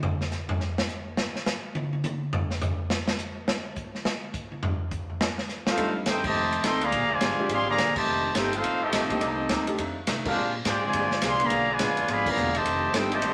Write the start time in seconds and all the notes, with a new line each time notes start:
0.03 floor tom
0.21 snare
0.31 snare, hi-hat pedal
0.49 floor tom
0.60 snare
0.78 snare
0.89 hi-hat pedal
1.17 snare
1.36 snare
1.46 snare, hi-hat pedal
1.75 high tom
1.93 high tom
2.04 hi-hat pedal, high tom
2.33 floor tom
2.51 snare
2.61 floor tom, hi-hat pedal
2.90 snare
3.08 snare
3.18 hi-hat pedal
3.48 snare
3.76 kick, hi-hat pedal
3.95 snare
4.05 snare
4.33 kick, hi-hat pedal
4.52 high tom
4.63 floor tom
4.91 kick, hi-hat pedal
5.10 floor tom
5.21 snare
5.38 snare
5.49 snare, hi-hat pedal
5.67 A3 C4 F4 F5, snare
5.71 D#4 A4 C5
5.77 F2 D#3 G3 A3 C4 D4 D#4 A4, kick, ride
6.06 F2 G2 D#3 A3 C4 D4 D#4 G4 A4 C5 G5, kick, snare, hi-hat pedal, ride
6.24 C3 D#3 A3 G4 C5 D#5 A5, kick, crash
6.34 F2 D#3 A3
6.38 D4
6.52 ride
6.63 D2 F2 D#3 A3 C4 D4 A4 D#5 G5 C6, kick, snare, hi-hat pedal, ride
6.81 D3 F3 A#3 G#4 D5 F5 A#5, ride
6.91 A#1 A#2 G#3 D4 G4, kick, ride
7.00 G#1
7.10 F1 D3 F3 G#3 F4 C5 D5 G#5
7.20 G1 A#2 G#3 D4 G4, kick, snare, hi-hat pedal, ride
7.38 D3 G#3 C4 D4 F4 G4, muted upright bass stroke
7.49 G#1 A#2 F3 G#3 C4 D4 G4 G#4 D5 F5 C6, kick, ride
7.67 D3 F3 A#3 G#4 D5 F5 A#5
7.77 A#1 A#2 G#3 D4 G4, kick, snare, hi-hat pedal, ride
7.96 C3 D#3 A3 G4 C5 D#5 A5, kick, crash
8.05 F1 F2 D#3 A3 D4
8.34 G1 F2 D#3 A3 C4 D4 D#4 G4 A4 C5 G5, kick, snare, hi-hat pedal, ride
8.53 A3 C4 D#4 F4 A4 C5 F5, ride
8.63 A1 F2 D#3 A3 D4, kick, ride
8.80 D#3 A3 C4 D#4 G4 D#5
8.84 A4
8.92 A#1 F2 D#3 A3 D4, kick, snare, hi-hat pedal, ride
9.10 A#3 C4 D4 D#4 G4, kick, ride
9.20 C2 C3 D#3 G3 A#3 C4 D#4 G4, kick, ride
9.49 D2 C3 G3 A#3 D#4, kick, snare, hi-hat pedal, ride
9.67 A3 C4 D4 D#4 G4, ride
9.78 F2 D#3 A3 D4, kick, ride
10.07 F2 C3 D#3 A3 D4, kick, snare, hi-hat pedal, ride
10.25 D3 G#3 C4 D4 F4 G4 A#4 F5, kick, crash
10.29 G#4 C5
10.36 A#2 G#3 D4 G4
10.64 G#2 A#2 G#3 D4 F4 G4 C5 D5 G5, kick, snare, hi-hat pedal, ride
10.81 D3 F3 G#3 C4 G#4
10.86 F4 C5 D5 G#5
10.92 G2 A#2 G#3 D4 G4, kick, ride
11.11 snare
11.22 C2 A#2 F3 G#3 C4 D4 G4 F5 C6, kick, snare, hi-hat pedal, ride
11.26 G#4 D5
11.40 D3 F3 A#3 B3 C#4 D4 F4 G#4 D5, ride
11.44 G#4 F5 A#5
11.50 B1 B2 F3 G#3 D4, kick, ride
11.70 D3 F3 G#3 F4 B4 D5 G#5
11.79 A1 B2 F3 G#3 B3 C#4 D4 F4 G#4, kick, snare, hi-hat pedal, ride
11.88 G#1
11.96 F1 D3 G#3 B3 F4, ride
12.08 G#1 B2 F3 G#3 B3 D4 G#4 F5 B5, kick, ride
12.12 D5
12.25 D3 F3 A#3 B3 C#4 D4 F4 A#4 F5, kick, crash
12.30 G#4 D5 A#5
12.36 E1 B2 F3 G#3 D4, hi-hat pedal
12.55 C3 D#3 A3 G4 C5 D#5 A5, ride
12.64 F1 F2 D#3 A3 D4, kick, ride
12.93 G1 F2 D#3 G3 A3 C4 D4 D#4 G4 A4 C5 G5, kick, snare, hi-hat pedal, ride
13.11 C3 D#3 A3 G4 C5 D#5 A5, ride
13.22 A1 F2 D#3 A3 D4, kick, ride